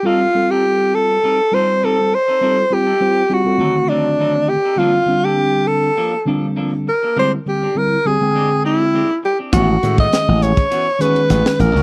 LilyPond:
<<
  \new Staff \with { instrumentName = "Alto saxophone" } { \time 4/4 \key f \mixolydian \tempo 4 = 101 f'8. g'8. a'4 c''8 a'8 c''8~ | c''8 g'4 ges'4 d'4 g'8 | f'8. g'8. a'4 r4 bes'8 | bis'8 g'8 bes'8 gis'4 e'4 g'8 |
fis'8. ees''8. cis''4 b'4 bes'8 | }
  \new Staff \with { instrumentName = "Clean electric guitar" } { \time 4/4 \key f \mixolydian <g c' ees' a'>16 r8 <c' ees' a'>16 r4 <g c' ees' a'>16 r16 <g c' ees' a'>16 r16 <g c' ees' a'>16 r8 <c' ees' a'>16 | <g c' ees' a'>16 r8 <c' ees' a'>16 r4 <fis c' ees' a'>16 r16 <fis c' ees' a'>16 r16 <fis c' ees' a'>16 r8 <c' ees' a'>16 | <f bes d' a'>16 r8 <bes d' a'>16 r4 <f bes d' a'>16 r16 <f bes d' a'>16 r16 <f bes d' a'>16 r8 <bes d' a'>16 | <gis bis d' g'>16 r8 <bis d' g'>16 r4 <gis bis d' g'>16 r16 <gis bis d' g'>16 r16 <gis bis d' g'>16 r8 <bis d' g'>16 |
<e b cis' fis'>16 r8 <b cis' fis'>16 r4 <e b cis' fis'>16 r16 <e b cis' fis'>16 r16 <e b cis' fis'>16 r8 <b cis' fis'>16 | }
  \new Staff \with { instrumentName = "Tine electric piano" } { \time 4/4 \key f \mixolydian <g c' f' a'>16 r16 <g c' f' a'>4~ <g c' f' a'>16 r8. <g c' f' c''>4 r8 | <g c' f' a'>16 r16 <g c' f' g'>16 r16 <g c' f' c''>16 r16 <g c' f' g'>16 <g c' f' a'>16 <d ees a c' fis'>4. r8 | <d g c' f'>16 r16 <d g c' d'>4~ <d g c' d'>16 r8. <d g c' d'>4 r8 | <d g bis e'>16 r16 <d g bis g'>16 r16 <d g bis e'>16 r16 <d g bis g'>16 <d gis bis g''>4~ <d gis bis g''>16 r4 |
<ees aes cis' fis'>16 r16 <ees aes cis' aes'>4~ <ees aes cis' aes'>16 r8. <ees aes cis' aes'>4 r8 | }
  \new Staff \with { instrumentName = "Slap bass" } { \clef bass \time 4/4 \key f \mixolydian r1 | r1 | r1 | r1 |
a,,8 a,8 r16 a,,8 r4 r16 a,,16 r16 a,,16 cis,16 | }
  \new DrumStaff \with { instrumentName = "Drums" } \drummode { \time 4/4 r4 r4 r4 r4 | r4 r4 r4 r4 | r4 r4 r4 r4 | r4 r4 r4 r4 |
<hhp bd cymr>8 <hhp cymr>16 bd16 <hhp cymr sn>8 <hhp cymr>16 <bd cymr>16 <hhp cymr>8 <hhp cymr>16 cymr16 <hhp cymr>16 sn16 <hhp cymr>16 sn16 | }
>>